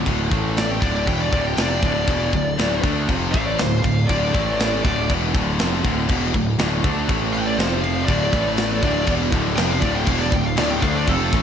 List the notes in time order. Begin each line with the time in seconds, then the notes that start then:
0.06 D1 D2 A2 D3, kick, crash
0.30 A1 A2 E3 A3, kick, crash
0.57 D5, snare, crash
0.71 G5
0.80 D1 D2 A2 D3 D5, kick, crash
0.95 D5
1.07 E1 E2 B2 E3 G5, kick, crash
1.20 D5
1.32 D1 D2 A2 D3 D5, kick, crash
1.46 G5
1.57 F1 F2 C3 F3 D5, snare, crash
1.82 D1 D2 A2 D3 D5, kick, crash
2.07 E1 E2 B2 E3, kick, crash
2.32 D1 D2 A2, kick, crash
2.58 D1 D2 A2 D3, snare, crash
2.84 D2 D3 A3 D4, kick, crash
3.09 F1 F2 C3 F3, kick, crash
3.32 A1 A2 E3 A3 F5, kick, crash
3.45 D5
3.57 D1 D2 A2 C5, snare, crash
3.82 D1 D2 A2 F5, kick, crash
4.07 D1 D2 A2 D3 D5, kick, crash
4.34 A1 A2 E3 A3, kick, crash
4.60 snare, crash
4.84 D1 D2 A2 D3 D5, kick, crash
5.10 E1 E2 B2 E3, kick, crash
5.33 D1 D2 A2 D3, kick, crash
5.59 F1 F2 C3 F3, snare, crash
5.84 D1 D2 A2 D3, kick, crash
6.08 E1 E2 B2 E3, kick, crash
6.34 D1 D2 A2, kick, crash
6.59 D1 D2 A2 D3, snare, crash
6.84 D2 D3 A3 D4, kick, crash
7.08 A1 A2 E3 A3, kick, crash
7.33 G5, crash
7.46 D5
7.57 F1 F2 C3 F3 C5, snare, crash
7.82 F5, crash
8.05 D1 D2 F3 D4 A4 D5, kick, crash
8.09 A2 D3
8.31 A1 A2 E3 A3, kick, crash
8.57 snare, crash
8.81 D1 D2 A2 D3 F3 D4 D5, kick, crash
9.07 E1 E2 B2 E3, kick, crash
9.32 D1 D2 A2 D3, kick, crash
9.56 F1 F2 C3 F3 G5, snare, crash
9.70 F5
9.81 D1 D2 D3 D5, kick, crash
9.85 A2
9.95 G5
10.06 E1 E2 B2 E3 F5, kick, crash
10.19 D5
10.31 D1 D2 A2 G5, kick, crash
10.45 F5
10.56 D1 D2 A2 D3 D5, snare, crash
10.70 G5
10.81 D2 D3 A3 C4 D4 F5, kick, crash
10.95 D5
11.06 F1 F2 C3 F3 A4, kick, crash
11.31 A1 A2 E3 A3, kick, crash